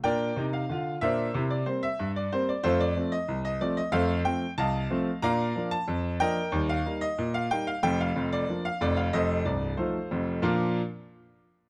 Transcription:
X:1
M:2/4
L:1/16
Q:1/4=92
K:Bb
V:1 name="Grand piano"
[Bdg]3 f3 [Bc=e]2- | [Bc=e] d c e2 d c d | [FAc] d2 e2 e d e | [Acf]2 g2 [efa]4 |
[dfb]3 a3 [Beg]2- | [Beg] f2 e2 f g f | g f2 d2 f d f | [Ace]2 d2 [FAc]4 |
[B,,F,DFBd]2 z6 |]
V:2 name="Grand piano" clef=bass
[B,,D]2 [C,E]2 [D,F]2 [B,,D]2 | [C,=E]2 [G,B,C]2 G,,2 [G,B,C]2 | [F,,A,]2 [F,A,C]2 C,,2 [F,A,C]2 | [F,,A,]2 [F,A,C]2 C,,2 [F,A,C]2 |
[B,,D]2 [F,B,D]2 F,,2 [F,B,D]2 | [E,,G,]2 [G,B,E]2 B,,2 [G,B,E]2 | [F,,,F,,]2 [F,,,F,,]2 [F,B,D]2 [F,,,F,,]2 | [F,,,F,,]2 [C,,,C,,]2 [F,A,E]2 [F,,,F,,]2 |
z8 |]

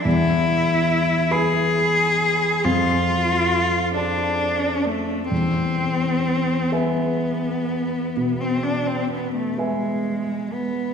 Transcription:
X:1
M:12/8
L:1/16
Q:3/8=43
K:Ephr
V:1 name="Grand piano"
E,,6 [Bb]6 F,,6 [da]6 | E,,6 [Be^g]6 B,,6 [Beg]6 |]
V:2 name="Cello"
E6 ^G6 F6 D4 A,2 | C6 B,6- B, C D C B, A, ^G,4 B,2 |]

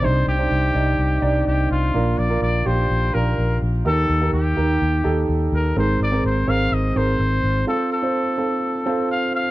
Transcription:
X:1
M:4/4
L:1/16
Q:1/4=126
K:Bb
V:1 name="Trumpet"
c2 G8- G2 G2 F2- | F2 d2 d2 c4 B4 z2 | A4 G8 z2 B2 | c2 d2 c2 f2 e2 c6 |
A2 A8- A2 f2 f2 |]
V:2 name="Upright piano"
[DEc]2 z [DEc]2 z [Ede]3 z [DEd]4- [DEd] z | [DFB]2 z [DFB]2 z [DFG]3 z [DFB]4- [DFB] z | [EGB]2 z [EGB]2 z [EGB]3 z [EGA]4- [EGA] z | [C_AB]2 z [CAB]2 z [CAB]3 z [CAB]4- [CAB] z |
[CFA]2 z [CFc]2 z [CFA]3 z [CFA]4- [CFA] z |]
V:3 name="Upright piano" clef=bass
C,6 z8 z2 | B,,6 z8 z2 | E,6 z8 z2 | _A,,6 z8 z2 |
z16 |]
V:4 name="Fingered electric bass" clef=bass
C,,2 C,,2 C,,2 C,,2 C,,2 C,,2 C,,2 C,,2 | B,,,2 B,,,2 B,,,2 B,,,2 B,,,2 B,,,2 B,,,2 B,,,2 | E,,2 E,,2 E,,2 E,,2 E,,2 E,,2 E,,2 E,,2 | _A,,,2 A,,,2 A,,,2 A,,,2 A,,,2 A,,,2 A,,,2 A,,,2 |
z16 |]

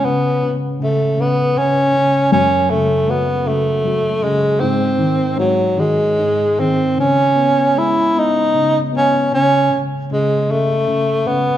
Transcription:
X:1
M:6/8
L:1/8
Q:3/8=52
K:G#phr
V:1 name="Tenor saxophone"
B, z A, B, C2 | C A, B, A,2 G, | ^B,2 F, G,2 B, | C2 E D2 C |
C z G, A,2 B, |]
V:2 name="Felt piano" clef=bass
C, C, C, C, C, C, | F,, C, F, C, F, C, | G,, D, G,, D, G,, D, | C, B, G, B, C, B, |
C, C, C, C, C, C, |]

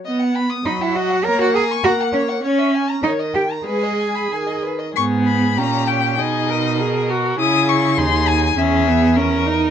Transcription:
X:1
M:2/4
L:1/16
Q:1/4=100
K:F#mix
V:1 name="Violin"
z4 d e f2 | a f g2 f2 c2 | [K:G#m] z4 d2 =g2 | g6 z2 |
c'2 b2 a2 =g2 | d6 z2 | d'2 c'2 ^b2 g2 | e6 z2 |]
V:2 name="Violin"
d f b d' b f d f | c f a c' a f c f | [K:G#m] c e g a c d =g a | B d g b g d B d |
G4 =G4 | G2 A6 | G4 G4 | G4 A4 |]
V:3 name="Cello"
z4 D E F2 | A F G2 F2 C2 | [K:G#m] z4 D2 =G2 | G6 z2 |
G,,4 A,,4 | B,,8 | C,4 D,,4 | E,,8 |]
V:4 name="Viola"
B,4 F,4 | A,4 A,4 | [K:G#m] C4 D,4 | G,4 D,4 |
B,4 C4 | D4 G2 F2 | E4 D4 | C2 B,2 C2 D2 |]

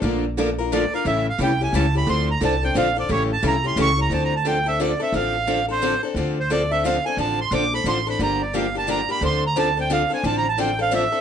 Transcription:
X:1
M:3/4
L:1/16
Q:"Swing" 1/4=176
K:Dm
V:1 name="Accordion"
z8 d2 f2 | e2 f2 g2 ^g2 a2 =b2 | c'2 b2 a2 g2 f2 d2 | ^c2 a2 b2 ^b2 ^c'2 _b2 |
(3a2 b2 a2 g2 e2 d2 e2 | f6 c4 z2 | z2 c2 d2 e2 f2 ^g2 | a2 c'2 d'2 =b2 c'2 b2 |
b2 d2 f2 a2 b2 =b2 | c'2 b2 a2 g2 f2 ^g2 | (3a2 b2 a2 g2 f2 e4 |]
V:2 name="Steel-string acoustic guitar"
[F,A,DFB]2 z2 [F,A,DFB] z [DFB]2 [F,A,DFB] z [DFB]2 | [^C,E,A,^CG]2 z2 [C,E,A,CG] z [A,CG]2 [C,E,A,CG] z [A,CG]2 | [D,F,CDA]2 z2 [D,F,CDA] z [CDA]2 [D,F,CDA] z [CDA]2 | [^C,E,A,^CG]2 z2 [C,E,A,CG] z [A,CG]2 [C,E,A,CG] z [A,CG]2 |
[D,F,CDA]2 z2 [D,F,CDA] z [CDA]2 [D,F,CDA] z [CDA]2 | [D,F,CDA]2 z2 [D,F,CDA] z [CDA]2 [D,F,CDA] z [CDA]2 | [D,F,CDA]2 z2 [D,F,CDA] z [CDA]2 [D,F,CDA] z [CDA]2 | [D,F,CDA]2 z2 [D,F,CDA] z [CDA]2 [D,F,CDA] z [CDA]2 |
[D,F,B,DG]2 z2 [D,F,B,DG] z [B,DG]2 [D,F,B,DG] z [B,DG]2 | [D,F,CDA]2 z2 [D,F,CDA] z [CDA]2 [D,F,CDA] z [CDA]2 | [D,F,CDA]2 z2 [D,F,CDA] z [CDA]2 [D,F,CDA] z [CDA]2 |]
V:3 name="Steel-string acoustic guitar"
[D,F,B,DA]2 z2 [D,F,B,DA] z3 [D,F,B,DA] z3 | [E,G,^CEA]2 z2 [E,G,CEA] z3 [E,G,CEA] z3 | [D,F,CDA]2 z2 [D,F,CDA] z3 [D,F,CDA] z3 | [E,G,^CEA]2 z2 [E,G,CEA] z3 [E,G,CEA] z3 |
[D,F,CDA]2 z2 [D,F,CDA] z3 [D,F,CDA] z3 | [D,F,CDA]2 z2 [D,F,CDA] z3 [D,F,CDA] z3 | [D,F,CDA]2 z2 [D,F,CDA] z3 [D,F,CDA] z3 | [D,F,CDA]2 z2 [D,F,CDA] z3 [D,F,CDA] z3 |
[D,F,B,DG]2 z2 [D,F,B,DG] z3 [D,F,B,DG] z3 | [D,F,CDA]2 z2 [D,F,CDA] z3 [D,F,CDA] z3 | [D,F,CDA]2 z2 [D,F,CDA] z3 [D,F,CDA] z3 |]
V:4 name="Upright bass" clef=bass
B,,,12 | A,,,4 ^B,,,4 ^C,,4 | D,,4 C,,4 B,,,4 | A,,,4 ^B,,,4 ^C,,4 |
D,,12 | A,,,12 | D,,12 | A,,,4 B,,,4 A,,,4 |
G,,,12 | D,,12 | A,,,12 |]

